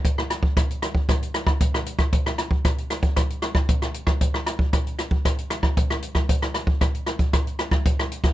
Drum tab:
HH |x-x-xxx-xxx-xxxx|xxx-xxxxxxx-xxxx|x-x-xxx-xxx-xxxx|xxx-xxxxxxx-xxxx|
SD |-rr-r-r-r-rr-r-r|-rr-r-r-r-rr-r-r|-rr-r-r-r-rr-r-r|-rr-r-r-r-rr-r-r|
BD |o--oo--oo--oo--o|o--oo--oo--oo--o|o--oo--oo--oo--o|o--oo--oo--oo--o|